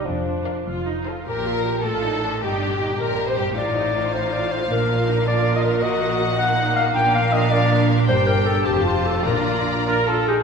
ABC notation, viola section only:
X:1
M:6/8
L:1/8
Q:3/8=105
K:Bb
V:1 name="Viola section"
D3 F E F | G F G F E D | E D E G3 | F E F4 |
D F E F3 | _G3 E3 | D6 | G6 |
D3 [DB] [FA] [G_A] |]